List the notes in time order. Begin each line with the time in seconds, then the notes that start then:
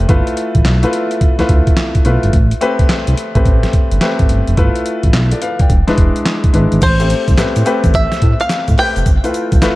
Already playing: A3 C4 G4 A#4 B4
0.09 G1 A3 E4 F4 B4, kick, closed hi-hat
0.27 closed hi-hat
0.37 closed hi-hat
0.55 A1, kick, closed hi-hat
0.65 B1, snare, clap, closed hi-hat
0.83 A3 E4 F4 B4, closed hi-hat
0.93 closed hi-hat
1.11 closed hi-hat
1.21 kick, closed hi-hat
1.39 D2 A3 E4 F4 B4, snare, closed hi-hat
1.49 D2, kick, closed hi-hat
1.67 kick, closed hi-hat
1.77 snare, clap, closed hi-hat
1.95 kick, closed hi-hat
2.05 B1 A3 E4 F4 B4, closed hi-hat
2.23 G1, closed hi-hat
2.33 A1, kick, closed hi-hat
2.51 closed hi-hat
2.61 A3 C4 G4 B4, closed hi-hat
2.79 C2, kick, closed hi-hat
2.89 snare, clap, closed hi-hat
3.07 C2, closed hi-hat
3.17 closed hi-hat
3.35 A1 A3 C4 G4 B4, kick, closed hi-hat
3.45 A1, kick, closed hi-hat
3.63 snare, closed hi-hat
3.73 kick, closed hi-hat
3.91 G1, closed hi-hat
4.01 A3 C4 G4 B4, snare, clap, closed hi-hat
4.19 A1, kick, closed hi-hat
4.29 G1, closed hi-hat
4.47 F1, closed hi-hat
4.57 G1 A3 E4 F4 B4, kick, closed hi-hat
4.76 closed hi-hat
4.86 closed hi-hat
5.03 A1, kick, closed hi-hat
5.13 B1, snare, clap, closed hi-hat
5.31 A4 D5, closed hi-hat
5.42 B4 F5, closed hi-hat
5.59 D5 G5, kick, closed hi-hat
5.70 E1, kick, closed hi-hat
5.87 E1 G#3 D4 E4 B4, snare, closed hi-hat
5.98 E1, kick, closed hi-hat
6.16 closed hi-hat
6.25 snare, clap, closed hi-hat
6.44 kick, closed hi-hat
6.53 G#1 G#3 D4 E4 B4, closed hi-hat
6.72 G#1, closed hi-hat
6.82 A1 C5, kick, closed hi-hat, crash, shaker
6.99 A3 C4 G4 C5, closed hi-hat, shaker
7.10 closed hi-hat, shaker
7.28 C2, kick, closed hi-hat, shaker
7.37 A2 A3 C4 G4 B4, snare, clap, closed hi-hat, shaker
7.56 A2, closed hi-hat, shaker
7.65 A3 C4 G4 B4, closed hi-hat, shaker
7.84 A1, kick, closed hi-hat, shaker
7.94 A1 E5, kick, closed hi-hat, shaker
8.12 snare, closed hi-hat, shaker
8.22 A2, kick, closed hi-hat
8.40 F5, closed hi-hat, shaker
8.49 snare, clap, closed hi-hat, shaker
8.68 A2, kick, closed hi-hat, shaker
8.77 A3 C4 G4 B4 G5, open hi-hat, shaker
8.96 F1, closed hi-hat, shaker
9.06 G1, kick, closed hi-hat, shaker
9.24 A3 E4 F4 B4, closed hi-hat, shaker
9.34 closed hi-hat, shaker
9.52 B1, kick, closed hi-hat, shaker
9.62 G1 A3 E4 F4 B4, snare, clap, closed hi-hat, shaker